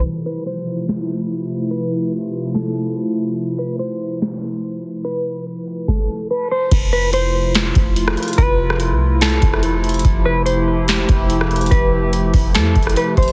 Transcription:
0.05 C3 F3 A3 E4 F4
0.26 B4
0.47 C5
0.89 snare
1.71 B4
2.54 A4, snare
3.59 B4
3.79 C5
4.22 snare
5.05 B4
5.67 open hi-hat
5.88 A4, kick, snare
6.31 B4
6.51 C5
6.71 F1 C3 F3 A3 E4 F4, kick, closed hi-hat, crash
6.93 B4
7.13 C5, closed hi-hat
7.55 snare, closed hi-hat
7.75 F1, kick, closed hi-hat
7.96 closed hi-hat
8.08 cross-stick
8.17 closed hi-hat
8.23 closed hi-hat
8.28 closed hi-hat
8.33 closed hi-hat
8.38 F1 B4, kick, closed hi-hat
8.70 cross-stick
8.80 closed hi-hat
8.90 C2
9.21 A4, snare, closed hi-hat
9.42 F1, kick, closed hi-hat
9.54 cross-stick
9.63 closed hi-hat
9.84 closed hi-hat
9.89 closed hi-hat
9.94 closed hi-hat
9.99 closed hi-hat
10.05 F1 G4, kick, closed hi-hat
10.25 B4
10.46 C5, closed hi-hat
10.88 snare, closed hi-hat
11.09 F1, kick, closed hi-hat
11.30 closed hi-hat
11.41 cross-stick
11.51 closed hi-hat
11.56 closed hi-hat
11.61 closed hi-hat
11.66 closed hi-hat
11.71 F1 B4, kick, closed hi-hat
12.13 closed hi-hat
12.34 F1, kick, open hi-hat
12.55 F2 A4, snare, closed hi-hat
12.76 F1, kick, closed hi-hat
12.83 closed hi-hat
12.87 cross-stick, closed hi-hat
12.96 B4, closed hi-hat
13.17 F1 C5, kick, closed hi-hat
13.23 closed hi-hat
13.28 closed hi-hat

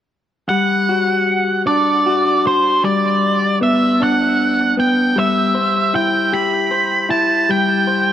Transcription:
0.49 G3 F#5
0.89 F#4
1.67 D4 D5
2.06 F#4
2.47 C5
2.84 G3 D5
3.61 B3 E5
4.00 D4 F#5
4.77 B3 G5
5.16 G3 E5
5.55 C5
5.94 E4 G5
6.33 G4 B5
6.71 C5
7.09 E4 A5
7.49 G3 G5
7.87 C5

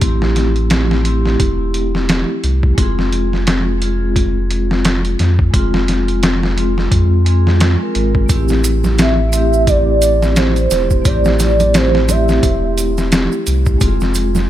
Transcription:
Already playing: C4 E4 G4
0.00 A1 A3 C4, kick, closed hi-hat
0.05 E4 G4
0.22 snare
0.36 snare, closed hi-hat
0.56 closed hi-hat
0.70 snare, closed hi-hat
0.91 snare
1.02 A3 C4, closed hi-hat
1.07 E4 G4
1.26 snare
1.40 E1, kick, closed hi-hat
1.74 closed hi-hat
1.95 snare
2.09 snare, closed hi-hat
2.44 C2, closed hi-hat
2.63 kick
2.75 F1 G#3 C4, kick, closed hi-hat
2.80 F4 G#4
2.99 snare
3.12 closed hi-hat
3.33 snare
3.47 snare, closed hi-hat
3.78 G#3 C4, closed hi-hat
3.83 F4 G#4
4.16 kick, closed hi-hat
4.51 closed hi-hat
4.71 snare
4.85 snare, closed hi-hat
5.05 closed hi-hat
5.19 F2, snare, closed hi-hat
5.39 kick
5.51 F1 G#3 C4, kick, closed hi-hat
5.56 F4 G#4
5.74 snare
5.88 snare, closed hi-hat
6.08 closed hi-hat
6.23 snare, closed hi-hat
6.43 snare
6.56 G#3 C4 F4 G#4, closed hi-hat
6.78 snare
6.92 F2, kick, closed hi-hat
7.25 G#3 C4 F4 G#4, closed hi-hat
7.47 snare
7.60 snare, closed hi-hat
7.79 G#3 C4 F4
7.83 A#4
7.95 G#1, closed hi-hat
8.15 kick
8.26 A1 A3 C4, kick, closed hi-hat, shaker
8.32 E4 G4
8.48 snare, shaker
8.64 closed hi-hat, shaker
8.84 snare, low conga, shaker
8.98 E5, snare, closed hi-hat, shaker
9.29 A3 C4, closed hi-hat, shaker
9.35 E4 G4
9.53 shaker
9.67 D5, kick, closed hi-hat, shaker
10.02 closed hi-hat, shaker
10.23 snare, shaker
10.36 C5, snare, closed hi-hat, shaker
10.56 closed hi-hat, shaker
10.71 E1, snare, closed hi-hat, shaker
10.90 kick, shaker
11.02 A1 A3 C4, kick, closed hi-hat, shaker
11.07 E4 G4 D5
11.25 snare, shaker
11.39 snare, closed hi-hat, shaker
11.60 closed hi-hat, low conga, shaker
11.74 C5, snare, closed hi-hat, shaker
11.95 snare
12.06 A3 C4, closed hi-hat, low conga, shaker
12.10 E4 G4 E5
12.28 snare, shaker
12.43 E1, kick, closed hi-hat, shaker
12.78 closed hi-hat, shaker
12.98 snare, shaker
13.12 snare, closed hi-hat, shaker
13.32 shaker
13.47 C2, closed hi-hat, shaker
13.66 kick, shaker
13.78 F1 G#3 C4, kick, closed hi-hat, shaker
13.83 F4 G#4
14.00 snare, shaker
14.14 closed hi-hat, shaker
14.35 snare, low conga, shaker

